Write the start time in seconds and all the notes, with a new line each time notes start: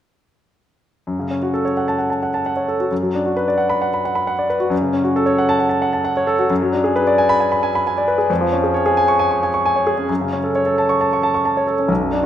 1.07 F#2
1.19 C#3
1.30 C#4
1.42 F#4
1.54 A4
1.65 C#5
1.77 F#5
1.88 A5
1.98 F#5
2.10 A5
2.23 F#5
2.34 A5
2.46 F#5
2.57 C#5
2.68 A4
2.80 F#4
2.91 F#2
3.03 F#3
3.15 D4
3.26 F#4
3.37 B4
3.48 D5
3.58 F#5
3.70 B5
3.81 F#5
3.94 B5
4.05 F#5
4.15 B5
4.27 F#5
4.39 D5
4.50 B4
4.60 F#4
4.70 F#2
4.82 C#3
4.93 C#4
5.04 F#4
5.16 A4
5.26 C#5
5.38 F#5
5.49 A5
5.59 F#5
5.69 A5
5.82 F#5
5.93 A5
6.05 F#5
6.17 C#5
6.27 A4
6.39 F#4
6.50 F#2
6.62 F#3
6.73 D4
6.84 G#4
6.96 B4
7.07 D5
7.18 G#5
7.29 B5
7.40 G#5
7.52 B5
7.63 G#5
7.75 B5
7.87 G#5
7.98 D5
8.08 B4
8.18 G#4
8.30 F2
8.41 F3
8.52 C#4
8.64 G#4
8.74 C#5
8.86 G#4
8.97 G#5
9.08 C#6
9.19 G#5
9.31 C#6
9.43 G#5
9.54 C#6
9.66 G#5
9.76 C#5
9.87 G#4
9.97 C#4
10.09 F#2
10.21 C#3
10.33 C#4
10.43 A4
10.55 C#5
10.66 A4
10.78 A5
10.89 C#6
11.01 A5
11.13 C#6
11.23 A5
11.34 C#6
11.45 A5
11.57 C#5
11.67 A4
11.79 C#4
11.88 B1
12.00 F#2
12.12 D4